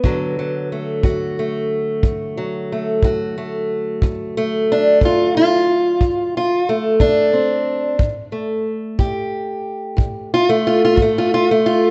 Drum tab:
BD |o--o--o--o--|o--o--o--o--|o--o--o--o--|